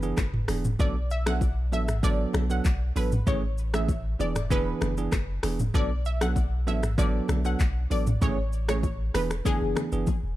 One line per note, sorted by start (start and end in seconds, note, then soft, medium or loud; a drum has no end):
0.00 0.14 F#1 loud
0.00 0.17 E3 medium
0.00 0.17 B3 medium
0.00 0.17 D4 medium
0.00 0.17 G#4 medium
0.00 shaker medium
0.17 0.44 F#1 medium
0.17 finger snap medium
0.17 kick loud
0.17 cross-stick medium
0.17 clap loud
0.17 high bongo medium
0.17 shaker medium
0.34 mid tom loud
0.48 0.76 E1 loud
0.48 0.64 E3 medium
0.48 0.64 B3 medium
0.48 0.64 D4 medium
0.48 0.64 G#4 medium
0.48 finger snap medium
0.48 cross-stick loud
0.48 open hi-hat medium
0.48 shaker medium
0.64 mid tom loud
0.64 low bongo medium
0.64 shaker medium
0.79 1.74 B1 loud
0.79 0.95 F#3 medium
0.79 0.95 B3 medium
0.79 0.95 D4 medium
0.79 0.95 A4 loud
0.79 0.94 D5 loud
0.79 kick loud
0.79 low conga medium
0.79 shaker medium
1.10 1.25 E5 medium
1.10 shaker medium
1.26 1.41 F#3 medium
1.26 1.41 B3 medium
1.26 1.41 D4 medium
1.26 1.41 A4 medium
1.26 1.40 F#5 medium
1.26 finger snap medium
1.26 cross-stick loud
1.26 low bongo medium
1.26 shaker medium
1.41 kick loud
1.41 high bongo medium
1.41 shaker medium
1.72 2.26 A1 loud
1.72 1.88 F#3 medium
1.72 1.88 B3 medium
1.72 1.88 D4 medium
1.72 1.88 A4 medium
1.72 1.86 E5 medium
1.72 high bongo medium
1.72 low bongo medium
1.72 shaker medium
1.88 finger snap medium
1.88 cross-stick medium
1.88 mid tom medium
1.88 shaker medium
2.03 2.46 F#3 loud
2.03 2.46 B3 medium
2.03 2.46 D4 medium
2.03 2.47 A4 loud
2.03 2.17 D5 loud
2.03 kick loud
2.03 low conga medium
2.03 shaker loud
2.33 2.61 B1 loud
2.33 finger snap medium
2.33 cross-stick loud
2.33 low bongo medium
2.33 low conga medium
2.33 shaker medium
2.50 2.64 F#3 medium
2.50 2.65 B3 medium
2.50 2.65 D4 medium
2.50 2.65 A4 medium
2.50 2.63 F#5 medium
2.50 shaker medium
2.65 2.92 B1 loud
2.65 kick loud
2.65 clap loud
2.65 high bongo medium
2.65 shaker medium
2.96 3.23 A1 loud
2.96 3.11 F#3 medium
2.96 3.11 B3 medium
2.96 3.12 D4 medium
2.96 3.12 A4 medium
2.96 3.10 B4 medium
2.96 open hi-hat medium
2.96 shaker medium
3.12 mid tom loud
3.12 low bongo medium
3.12 shaker medium
3.27 4.16 A1 loud
3.27 3.42 E3 loud
3.27 3.42 A3 medium
3.27 3.43 C#4 medium
3.27 3.43 G#4 loud
3.27 3.41 C#5 loud
3.27 kick loud
3.27 low conga medium
3.27 shaker medium
3.58 shaker medium
3.74 3.88 E3 medium
3.74 3.88 A3 medium
3.74 3.88 C#4 medium
3.74 3.88 G#4 medium
3.74 3.87 E5 medium
3.74 finger snap loud
3.74 cross-stick loud
3.74 low bongo medium
3.74 shaker medium
3.88 kick loud
3.88 high bongo medium
3.88 shaker medium
4.19 4.74 E1 loud
4.19 4.35 E3 medium
4.19 4.35 B3 medium
4.19 4.35 D4 medium
4.19 4.35 G#4 medium
4.19 4.34 D5 medium
4.19 high bongo medium
4.19 low bongo medium
4.19 shaker medium
4.36 finger snap medium
4.36 cross-stick medium
4.36 mid tom medium
4.36 shaker medium
4.50 4.94 E3 loud
4.50 4.94 B3 medium
4.50 4.94 D4 medium
4.50 4.94 G#4 loud
4.50 4.95 B4 loud
4.50 kick loud
4.50 low conga medium
4.50 shaker loud
4.81 5.08 F#1 loud
4.81 finger snap medium
4.81 cross-stick loud
4.81 low bongo medium
4.81 low conga medium
4.81 shaker medium
4.97 5.12 E3 medium
4.97 5.12 B3 medium
4.97 5.12 D4 medium
4.97 5.12 G#4 medium
4.97 shaker medium
5.12 5.39 F#1 medium
5.12 finger snap medium
5.12 kick loud
5.12 cross-stick loud
5.12 clap loud
5.12 high bongo medium
5.12 shaker medium
5.43 5.70 E1 loud
5.43 5.59 E3 medium
5.43 5.59 B3 medium
5.43 5.59 D4 medium
5.43 5.59 G#4 medium
5.43 finger snap medium
5.43 cross-stick loud
5.43 open hi-hat medium
5.43 shaker medium
5.59 mid tom loud
5.59 low bongo medium
5.59 shaker medium
5.74 6.69 B1 loud
5.74 5.90 F#3 medium
5.74 5.90 B3 medium
5.74 5.90 D4 medium
5.74 5.90 A4 loud
5.74 5.88 D5 loud
5.74 kick loud
5.74 low conga medium
5.74 shaker medium
6.05 6.19 E5 medium
6.05 shaker medium
6.21 6.36 F#3 medium
6.21 6.36 B3 medium
6.21 6.36 D4 medium
6.21 6.36 A4 medium
6.21 6.34 F#5 medium
6.21 finger snap medium
6.21 cross-stick loud
6.21 low bongo medium
6.21 shaker medium
6.36 kick loud
6.36 high bongo medium
6.36 shaker medium
6.67 7.21 A1 loud
6.67 6.83 F#3 medium
6.67 6.83 B3 medium
6.67 6.83 D4 medium
6.67 6.83 A4 medium
6.67 6.81 E5 medium
6.67 high bongo soft
6.67 low bongo soft
6.67 shaker medium
6.83 finger snap medium
6.83 cross-stick medium
6.83 mid tom medium
6.83 shaker medium
6.97 7.41 F#3 loud
6.97 7.41 B3 medium
6.97 7.41 D4 medium
6.97 7.41 A4 loud
6.97 7.12 D5 medium
6.97 kick loud
6.97 low conga medium
6.97 shaker medium
7.28 7.56 B1 loud
7.28 finger snap medium
7.28 cross-stick medium
7.28 low bongo medium
7.28 low conga medium
7.28 shaker medium
7.45 7.59 F#3 medium
7.45 7.59 B3 medium
7.45 7.59 D4 medium
7.45 7.60 A4 medium
7.45 7.58 F#5 medium
7.45 shaker medium
7.59 7.87 B1 loud
7.59 kick loud
7.59 clap medium
7.59 high bongo medium
7.59 shaker medium
7.90 8.18 A1 loud
7.90 8.06 F#3 medium
7.90 8.06 B3 medium
7.90 8.06 D4 medium
7.90 8.07 A4 medium
7.90 8.05 D5 medium
7.90 open hi-hat medium
7.90 shaker medium
8.07 mid tom loud
8.07 low bongo medium
8.07 shaker medium
8.21 9.10 A1 loud
8.21 8.37 E3 medium
8.21 8.37 A3 medium
8.21 8.37 C#4 medium
8.21 8.37 G#4 loud
8.21 8.36 C#5 medium
8.21 kick loud
8.21 low conga medium
8.21 shaker medium
8.53 shaker soft
8.68 8.83 E3 medium
8.68 8.83 A3 medium
8.68 8.83 C#4 medium
8.68 8.83 G#4 medium
8.68 8.82 C#5 medium
8.68 finger snap loud
8.68 cross-stick loud
8.68 high bongo medium
8.68 low bongo medium
8.68 shaker medium
8.83 kick loud
8.83 high bongo medium
8.83 shaker medium
9.14 9.41 E1 loud
9.14 9.30 E3 medium
9.14 9.30 B3 medium
9.14 9.30 D4 medium
9.14 9.30 G#4 medium
9.14 9.29 B4 medium
9.14 finger snap medium
9.14 cross-stick loud
9.14 open hi-hat medium
9.14 high bongo medium
9.14 low bongo medium
9.14 shaker medium
9.30 finger snap medium
9.30 cross-stick medium
9.30 shaker medium
9.45 9.88 E3 medium
9.45 9.88 B3 medium
9.45 9.89 D4 medium
9.45 9.89 G#4 loud
9.45 9.90 G#4 loud
9.45 kick loud
9.45 low conga medium
9.45 shaker loud
9.61 9.74 F#1 medium
9.75 finger snap medium
9.75 cross-stick loud
9.75 low bongo medium
9.75 low conga medium
9.75 shaker medium
9.92 10.05 F#1 loud
9.92 10.07 E3 medium
9.92 10.07 B3 medium
9.92 10.07 D4 medium
9.92 10.07 G#4 medium
9.92 shaker medium
10.07 kick loud
10.07 high tom medium
10.07 high bongo medium
10.07 shaker medium
10.23 10.36 E1 medium